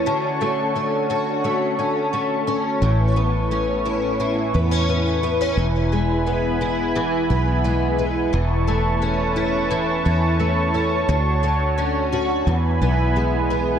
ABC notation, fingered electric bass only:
X:1
M:4/4
L:1/8
Q:1/4=87
K:A
V:1 name="Fingered electric bass" clef=bass
z8 | A,,,4- A,,, E,,3 | E,,,4- E,,, B,,,3 | E,,,4- E,,, E,,3 |
D,,4 E,, B,,,3 |]